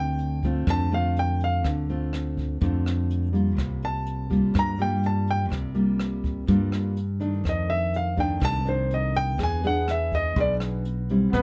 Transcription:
Already playing: D2 D3 A3 C4 F4 G5
0.18 closed hi-hat
0.43 A3 C4 F4, kick, closed hi-hat
0.67 F2 D3 A5, kick, cross-stick, closed hi-hat
0.91 A3 C4 F4 F5, closed hi-hat
1.16 G5, closed hi-hat
1.40 F5, closed hi-hat
1.64 D2 D3, kick, cross-stick, closed hi-hat
1.89 A3 C4 F4, closed hi-hat
2.13 cross-stick, closed hi-hat
2.37 kick, closed hi-hat
2.61 F2 D3 A3 C4 F4, kick, closed hi-hat
2.86 cross-stick, closed hi-hat
3.10 closed hi-hat
3.33 G3 A#3 F4, closed hi-hat
3.57 C2 C3, kick, cross-stick, closed hi-hat
3.82 A5, closed hi-hat
4.06 closed hi-hat
4.30 G3 A#3 F4, kick, closed hi-hat
4.54 G2, kick, cross-stick, closed hi-hat
4.59 A#5
4.78 G3 A#3 F4 G5, closed hi-hat
5.03 A5, closed hi-hat
5.27 G5, closed hi-hat
5.50 C2 C3, kick, cross-stick, closed hi-hat
5.74 G3 A#3 F4, closed hi-hat
5.99 cross-stick, closed hi-hat
6.24 kick, closed hi-hat
6.47 G2 G3 A#3 F4, kick, closed hi-hat
6.72 cross-stick, closed hi-hat
6.97 closed hi-hat
7.20 D#3 A3 D4, closed hi-hat
7.44 F2, kick, cross-stick, closed hi-hat
7.49 D#5
7.69 E5, closed hi-hat
7.94 F5, closed hi-hat
8.17 D#3 A3 D4 G5, kick, closed hi-hat
8.40 C2 C3, kick, cross-stick, closed hi-hat
8.45 A5
8.64 D#3 A3 D4, closed hi-hat
8.69 C5
8.90 D#5, closed hi-hat
9.14 G5, closed hi-hat
9.38 E2 E3 B3 D4 G#4, kick, cross-stick, closed hi-hat
9.43 G#5
9.63 B3 D4 G#4 F#5, closed hi-hat
9.88 E5, cross-stick, closed hi-hat
10.12 D#5, kick, closed hi-hat
10.36 B1 B2 B3 D4 G#4, kick, closed hi-hat
10.40 D5
10.60 cross-stick, closed hi-hat
10.85 closed hi-hat
11.09 G3 C4 E4, closed hi-hat
11.32 A1 A2 B3 B4, kick, cross-stick, closed hi-hat

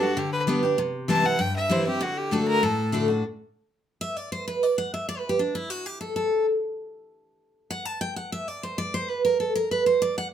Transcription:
Already playing: G2
0.01 D4 F#4 G4
0.17 D3 G4
0.32 B4
0.47 G3 B3 D4 G4
0.63 D4 G4
0.78 C3
1.08 E3 G3 C4 E4 A5
1.24 C4 E4 F#5
1.39 G2 G5
1.56 E5
1.70 E3 G3 C4 E4 C5
1.85 C4 E4 G4
2.01 D3 F#4
2.17 G4
2.31 D3 A3 D4 F#4 A4
2.47 A#4
2.63 A2 A4
2.92 D3 A3 D4 F#4
3.08 D4 F#4
4.01 E5
4.17 D5
4.32 C5
4.48 B4
4.63 D5
4.78 F#5
4.94 E5
5.09 D5
5.18 B4
5.29 G4
5.39 D4
5.55 E4
5.70 F#4
5.86 G4
6.01 A4
6.16 A4
7.71 F#5
7.85 A5
8.01 G5
8.16 F#5
8.32 E5
8.48 D5
8.63 C5
8.78 D5
8.94 C5
9.09 B4
9.25 A#4
9.40 A4
9.55 A#4
9.71 B4
9.86 C5
10.02 D5
10.18 F#5

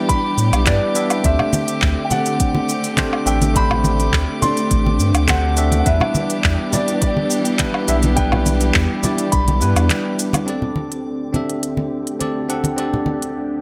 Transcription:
Already playing: E3 G3 B3 D4 E4 G4 B4 D5 E5 G5 D6
0.09 B5, kick, closed hi-hat, shaker
0.38 A2, shaker
0.53 B1, closed hi-hat, low woodblock, shaker
0.66 G2 G3 B3 D4 E4 B4 D5, kick, clap, closed hi-hat, shaker
0.95 G3 B3 D4 E4 E5, closed hi-hat, shaker
1.10 closed hi-hat, low woodblock, shaker
1.23 D2 D3 A3 C4 D4 G4 C5 E5, kick, closed hi-hat, shaker
1.39 low conga, low woodblock
1.53 high conga, shaker
1.68 closed hi-hat, shaker
1.82 D2, kick, clap, shaker
2.05 G5
2.10 A3 C4 D4 G4 D5 F#5, closed hi-hat, high conga, low conga, shaker
2.26 closed hi-hat, shaker
2.40 kick, closed hi-hat, shaker
2.55 high conga
2.69 shaker
2.84 closed hi-hat, shaker
2.97 A3 C4 D4 G4 C5, kick, clap, closed hi-hat, high conga, shaker
3.13 low woodblock
3.26 A1 A3 C4 D4 G4 E5 G5, closed hi-hat, shaker
3.42 closed hi-hat, high conga, shaker
3.54 A3 C4 D4 G4 C5 B5, kick, closed hi-hat, shaker
3.71 low conga, low woodblock
3.84 high conga, shaker
4.00 closed hi-hat, shaker
4.13 D2, kick, clap, shaker
4.41 A3 C4 D4 G4 D5 C6, closed hi-hat, high conga, low conga, shaker
4.57 closed hi-hat, shaker
4.71 A1, kick, closed hi-hat, shaker
4.86 high conga
4.99 G2, shaker
5.14 D2, closed hi-hat, low woodblock, shaker
5.28 A3 C4 D4 G4 C5 F#5, kick, clap, closed hi-hat, high conga, shaker
5.56 A3 C4 D4 G4 E5, closed hi-hat, shaker
5.72 closed hi-hat, high conga, shaker
5.79 F#5
5.84 E2 E3 G3 B3 D4 E4 G4 B4 E5, kick, closed hi-hat, shaker
6.00 low conga, low woodblock
6.15 high conga, shaker
6.30 closed hi-hat, shaker
6.44 E2, kick, clap, shaker
6.71 G3 B3 D4 E4 D5, closed hi-hat, high conga, low conga, shaker
6.88 closed hi-hat, shaker
7.01 D5, kick, closed hi-hat, shaker
7.17 high conga
7.30 shaker
7.45 closed hi-hat, shaker
7.59 G3 B3 D4 E4 B4, kick, clap, closed hi-hat, high conga, shaker
7.74 low woodblock
7.88 B1 G3 B3 D4 E4 E5, closed hi-hat, shaker
8.03 closed hi-hat, high conga, shaker
8.15 G3 B3 D4 E4 B4 G5, kick, closed hi-hat, shaker
8.32 low conga, low woodblock
8.46 closed hi-hat, high conga, shaker
8.61 closed hi-hat, shaker
8.74 E2, kick, clap, shaker
9.03 G3 B3 D4 E4 D5, closed hi-hat, high conga, low conga, shaker
9.18 closed hi-hat, shaker
9.32 B1 B5, kick, closed hi-hat, shaker
9.48 closed hi-hat, high conga
9.61 G2 G3 B3 D4 E4 B4, shaker
9.76 E2, closed hi-hat, low woodblock, shaker
9.90 clap, closed hi-hat, high conga, shaker
10.19 closed hi-hat, shaker
10.33 closed hi-hat, high conga, low woodblock, shaker
10.46 D2 D3 C4 D4 G4 A4 D5, closed hi-hat
10.62 low conga
10.76 high conga
10.92 closed hi-hat
11.33 C4 D4 G4 A4 E5, closed hi-hat, high conga, low conga
11.50 closed hi-hat
11.63 closed hi-hat
11.77 high conga
12.07 closed hi-hat
12.19 C4 D4 G4 A4 D5, closed hi-hat, high conga
12.49 C4 D4 G4 A4 F#5, closed hi-hat
12.64 closed hi-hat, high conga
12.76 C4 D4 G4 A4 D5, closed hi-hat
12.94 low conga
13.06 high conga
13.22 closed hi-hat

